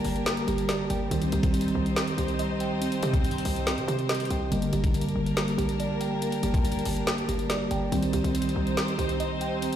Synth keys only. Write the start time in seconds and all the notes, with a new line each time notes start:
Already playing: A#3 G4 D5 G5
0.26 A#3
0.48 G4
0.69 D5
0.90 G5
1.11 C4
1.33 G4
1.54 C4
1.96 C4
2.18 G4
2.39 D#5
2.60 G5
2.81 C4
3.03 G4
3.24 C4
3.67 C4
3.88 G4
4.09 D#5
4.31 G5
4.52 A#3
4.73 G4
4.94 A#3
5.37 A#3
5.58 G4
5.80 D5
6.01 G5
6.22 A#3
6.43 G4
6.65 A#3
7.07 A#3
7.28 G4
7.50 D5
7.71 G5
7.92 C4
8.14 G4
8.35 C4
8.77 C4
8.99 G4
9.20 D#5
9.41 G5
9.62 C4